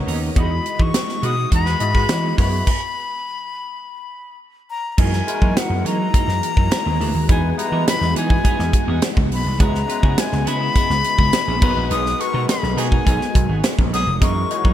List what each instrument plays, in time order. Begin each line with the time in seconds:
Already playing: string machine C#3 B3 A#4 D#5, tine electric piano B3 D#4 A#4 C#5
0.06 slap bass D#2, clean electric guitar C#4 D#4 A#4, open hi-hat
0.21 muted clean electric guitar stroke
0.35 slap bass E2, string machine E3 G#3 F#4, tine electric piano G3 E4 F#4 D#5, clean electric guitar G#3 D#4 F#4, flute B5, kick, closed hi-hat
0.41 tine electric piano G#3
0.51 muted clean electric guitar stroke
0.65 muted clean electric guitar stroke, closed hi-hat
0.79 slap bass E3, clean electric guitar G#3 D#4 F#4, flute C#6, kick
0.93 muted clean electric guitar stroke, snare, closed hi-hat
1.07 muted clean electric guitar stroke, snare
1.21 slap bass B2, clean electric guitar G#3 D#4 F#4, horn section G#3 F#4 B4, flute D#6, closed hi-hat
1.36 clean electric guitar G#3 D#4 F#4
1.50 slap bass E2, clean electric guitar G#3 D#4 F#4, kick, closed hi-hat
1.54 flute B5
1.65 horn section G#3 F#4 B4, muted clean electric guitar stroke, snare
1.79 slap bass G#2, tine electric piano G#3 E4 F#4 D#5, muted clean electric guitar stroke, closed hi-hat
1.93 horn section G#3 F#4 B4, clean electric guitar G#3 D#4 F#4, kick
2.09 slap bass E3, snare, closed hi-hat
2.23 clean electric guitar G#3 D#4 F#4
2.37 slap bass F#2, tine electric piano G#3 E4 F#4 B4, clean electric guitar B3 E4 A#4, string machine B3, flute B5, kick, open hi-hat
2.52 muted clean electric guitar stroke
2.67 kick, crash
4.70 flute A#5
4.92 flute A#5
4.97 slap bass F#2, clean electric guitar E3 A#3 D#4, string machine E3 G#3 A#3 F#4, tine electric piano G#3 D#4 E4 F#4 A#4, flute G#5, kick, crash
5.12 muted clean electric guitar stroke, snare
5.27 tine electric piano G#3 D#4 E4 F#4 A#4, muted clean electric guitar stroke, closed hi-hat
5.41 clean electric guitar E3 A#3 D#4, slap bass F#3, kick
5.56 flute F#5, muted clean electric guitar stroke, snare, closed hi-hat
5.70 slap bass F#2, muted clean electric guitar stroke
5.85 clean electric guitar E3 A#3 D#4, slap bass F#3, flute A#5, closed hi-hat
6.00 clean electric guitar E3 A#3 D#4
6.14 clean electric guitar E3 A#3 D#4, kick, closed hi-hat
6.28 slap bass F#2, muted clean electric guitar stroke, snare
6.43 muted clean electric guitar stroke, closed hi-hat
6.57 slap bass F#2, clean electric guitar E3 A#3 D#4, kick
6.71 snare, closed hi-hat
6.85 slap bass D#2, clean electric guitar E3 A#3 D#4
7.00 slap bass D2, clean electric guitar E3 A#3 E4, open hi-hat
7.15 slap bass D#2, muted clean electric guitar stroke
7.28 slap bass E2, string machine E3 B3, tine electric piano G#3 B3 D#4 E4 B4, clean electric guitar B3 D#4 G#4, flute G#5, kick, closed hi-hat
7.43 muted clean electric guitar stroke
7.57 tine electric piano G3 B3 D#4 E4 B4, flute A#5, muted clean electric guitar stroke, closed hi-hat
7.64 tine electric piano G#3
7.72 slap bass E3, clean electric guitar B3 D#4 A#4
7.86 flute B5, muted clean electric guitar stroke, snare, closed hi-hat
8.01 slap bass E2, muted clean electric guitar stroke, snare
8.15 slap bass E3, clean electric guitar B3 D#4 G#4, flute G#5, closed hi-hat
8.29 clean electric guitar B3 D#4 G#4, kick
8.44 clean electric guitar B3 D#4 G#4, kick, closed hi-hat
8.59 slap bass E2, muted clean electric guitar stroke, snare
8.73 muted clean electric guitar stroke, kick, closed hi-hat
8.88 slap bass E2, clean electric guitar B3 D#4 G#4
9.02 muted clean electric guitar stroke, snare, closed hi-hat
9.17 slap bass C#2, muted clean electric guitar stroke, kick
9.31 slap bass B1, flute B5, open hi-hat
9.45 slap bass C2, muted clean electric guitar stroke
9.59 slap bass C#2, string machine C#3 B3, tine electric piano G#3 B3 C#4 E4 B4, clean electric guitar B3 E4 G#4, flute A#5, kick, closed hi-hat
9.74 muted clean electric guitar stroke, snare
9.88 tine electric piano G#3 B3 C#4 E4 B4, muted clean electric guitar stroke, closed hi-hat
10.03 slap bass C#3, clean electric guitar B3 E4 G#4, kick
10.17 flute G#5, muted clean electric guitar stroke, snare, closed hi-hat
10.32 slap bass C#2, muted clean electric guitar stroke, snare
10.46 slap bass C#3, clean electric guitar B3 E4 G#4, flute B5, closed hi-hat
10.60 clean electric guitar B3 E4 G#4
10.74 clean electric guitar B3 E4 G#4, kick, closed hi-hat
10.89 slap bass C#2, muted clean electric guitar stroke, snare
11.03 muted clean electric guitar stroke, closed hi-hat
11.18 slap bass C#2, clean electric guitar B3 E4 G#4, kick
11.32 muted clean electric guitar stroke, snare, closed hi-hat
11.47 slap bass A#1, clean electric guitar B3 E4 G#4
11.61 slap bass B1, string machine F#3 G#3 F#4, tine electric piano G#3 B3 D#4 F#4 B4, clean electric guitar B3 D#4 A#4, kick, crash
11.75 slap bass A#1, muted clean electric guitar stroke
11.89 slap bass B1, horn section D#3 B3 G#4, clean electric guitar B3 D#4 G#4, flute D#6, closed hi-hat
12.04 muted clean electric guitar stroke, snare
12.18 tine electric piano G#3 B3 D#4 F#4 A4, flute C#6, muted clean electric guitar stroke, closed hi-hat
12.27 tine electric piano A#4
12.33 slap bass B2, clean electric guitar B3 D#4 A#4
12.47 flute B5, muted clean electric guitar stroke, snare, closed hi-hat
12.62 slap bass B1, muted clean electric guitar stroke, snare
12.76 slap bass B2, horn section D#3 B3 G#4, clean electric guitar B3 D#4 G#4, flute G#5, closed hi-hat
12.91 clean electric guitar B3 D#4 G#4, kick
13.05 slap bass B1, clean electric guitar B3 D#4 G#4, kick, closed hi-hat
13.21 muted clean electric guitar stroke, snare
13.34 slap bass B1, muted clean electric guitar stroke, kick, closed hi-hat
13.49 slap bass G#1, clean electric guitar B3 D#4 G#4
13.63 muted clean electric guitar stroke, snare, closed hi-hat
13.78 slap bass A#1, muted clean electric guitar stroke, kick
13.93 slap bass B1, horn section D#3 B3 G#4, flute D#6, closed hi-hat
14.07 slap bass F1, muted clean electric guitar stroke
14.21 slap bass F#2, string machine E3 A#3, clean electric guitar E3 A#3 D#4, tine electric piano G#3 D#4 E4 F#4 A#4, flute C#6, kick, closed hi-hat
14.36 muted clean electric guitar stroke
14.50 tine electric piano G#3 D#4 E4 F#4 C#5, muted clean electric guitar stroke, closed hi-hat
14.64 clean electric guitar E3 A#3 D#4, slap bass F#3, kick